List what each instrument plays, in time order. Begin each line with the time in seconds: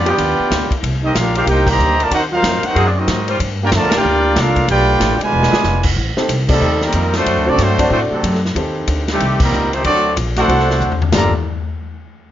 Already playing: upright bass F2
0.05 saxophone section F3 B3 D#4 G4, ride
0.10 trombone section B3 D4 G4, trumpet section F4 B4 D5 G5
0.18 upright bass D#2, kick, ride
0.39 muted upright bass stroke
0.51 upright bass D2, kick, snare, hi-hat pedal, ride
0.71 muted upright bass stroke, kick, ride
0.83 upright bass C2, kick, ride
1.03 trombone section G3 A#3 D#4, trumpet section C4 G4 A#4 D#5
1.15 upright bass A#1, trumpet section D4 G4 A#4 F5, trombone section F4, kick, snare, hi-hat pedal, ride
1.35 saxophone section D#3 A#3 C4 G4, trumpet section D4 G4 A#4 F5, trombone section F4, ride
1.47 upright bass C2, trombone section A#3 D#4 G4, trumpet section D#4 A#4 C5 G5, kick, ride
1.67 trombone section D#3 G3 A#3, trumpet section C5 D#5 A#5, kick, crash
1.71 trumpet section G4
1.78 upright bass D2, hi-hat pedal
1.98 trombone section A3, ride
2.03 trumpet section F4 A#4 D5 A5
2.11 upright bass D#2, trombone section C4 D#4 F#4, trumpet section D#4 A#4 C5 F#5, kick, ride
2.31 trombone section F#3 C4 F4, trumpet section D#4 A#4 C5 F5
2.43 upright bass F2, kick, snare, hi-hat pedal, ride
2.63 trombone section C4 D#4 F#4, trumpet section D#4 A#4 C5 F#5, muted upright bass stroke, ride
2.74 upright bass F#2, saxophone section F#3 A#3 C4 G#4, kick, ride
2.87 trumpet section D5
2.97 trombone section F#3 C4 D#4, trumpet section C4 F#4 A#4 D#5
3.07 upright bass G#2, kick, snare, hi-hat pedal, ride
3.28 saxophone section G3 A#3 F4 C5, ride
3.40 upright bass G2, kick, ride
3.63 trombone section A#3 D4 G4, trumpet section F4 A#4 D5 G5
3.72 upright bass F2, trombone section D3 F3 A3, kick, snare, hi-hat pedal, ride
3.77 trumpet section F4 A#4 D5 A5
3.84 upright bass D2
3.88 saxophone section G3 A#3 F4 A#4, snare, ride
3.94 upright bass A#1, trombone section A#3 D4 G4, trumpet section F4 A#4 D5 G5
4.05 upright bass D2
4.36 upright bass C2, trombone section A#3 D4 F4, trumpet section D4 A4 A#4 F5, kick, snare, hi-hat pedal, ride
4.56 kick, ride
4.68 upright bass B1, trombone section A3 D4 G4, trumpet section F4 B4 D5 G5, kick, ride
5.00 upright bass A1, kick, snare, hi-hat pedal, ride
5.20 trombone section B2 D3 G#3, trumpet section F4 B4 D5 G#5, muted upright bass stroke, ride
5.33 upright bass E1
5.43 snare
5.50 saxophone section F3 D4 E4 G#4, snare
5.63 upright bass F1, snare, hi-hat pedal
5.83 kick, crash
5.96 upright bass A1, kick
6.17 grand piano C4 D#4 G4 A4 C5, muted upright bass stroke, snare
6.29 upright bass C2, kick, hi-hat pedal, ride
6.48 trombone section D#3 A3, grand piano C4 D#4 G4 A4 D5, kick, crash
6.52 trombone section C3, trumpet section G3 C4 D#4 A4
6.61 upright bass D#2
6.81 trombone section D#3 G3 A#3, trumpet section G3 C4 D#4 A#4, snare
6.92 upright bass F2, kick, hi-hat pedal, ride
7.13 trombone section F#3 A3 C4, trumpet section A3 D4 C5, snare, ride
7.17 trumpet section F#4
7.26 upright bass F#2, kick, ride
7.36 upright bass D2
7.46 upright bass C2, trombone section F#3 A3 D4, grand piano C4 D4 F#4 A4 C5, trumpet section C4 F#4 A4 D5
7.58 upright bass G2, trombone section F#3 A3 C4, trumpet section A3 D4 F#4 C5, kick, snare, hi-hat pedal, ride
7.78 grand piano C4 D4 F#4 A4 D5, kick, ride
7.89 upright bass A2, trombone section F#3 A3 C4, trumpet section A3 D4 F#4 C5, kick
8.10 trombone section C3 F#3 A3, trumpet section F#3 C4 D4 A4, muted upright bass stroke
8.23 upright bass F#2, kick, hi-hat pedal, ride
8.35 snare
8.45 snare
8.55 upright bass D#2, grand piano C4 D#4 G4 A4 C5, kick, ride
8.87 upright bass D2, kick, hi-hat pedal, ride
9.08 trombone section C3 D#3, trumpet section A3, snare, ride
9.12 trombone section G3, trumpet section C4 G4
9.20 upright bass C2, kick, ride
9.40 trombone section D#3 G3 A#3, trumpet section G3 C4 D#4 A#4, kick, crash
9.52 upright bass C#2, hi-hat pedal
9.73 trombone section D#3 G3 C4, trumpet section A3 D#4 G4 C5, ride
9.84 upright bass D2, trumpet section C4 F#4 A4 D5, kick, ride
9.88 trombone section F#3 A3 D4
10.16 upright bass A#1, kick, hi-hat pedal, ride
10.36 trombone section A3 C4 F#4, trumpet section D4 A4 C5 F#5, snare, ride
10.48 upright bass C2, grand piano C4 D4 F#4 A4 C5, kick, ride
10.59 snare
10.70 snare
10.80 upright bass D2, floor tom, hi-hat pedal
10.92 floor tom
11.02 floor tom
11.12 upright bass G1, trombone section G2 D3 F3 A#3, grand piano A#3 F4 G4 A4 D5, trumpet section F4 A4 D5 A#5, snare, floor tom, crash